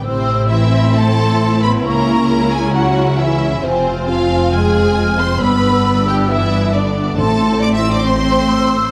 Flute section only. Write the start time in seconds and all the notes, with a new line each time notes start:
0.06 E6
0.50 C6
1.86 C#6
2.29 A#5
3.19 G#5
4.51 F6
5.40 E6
6.74 D6
7.18 C6
8.51 E6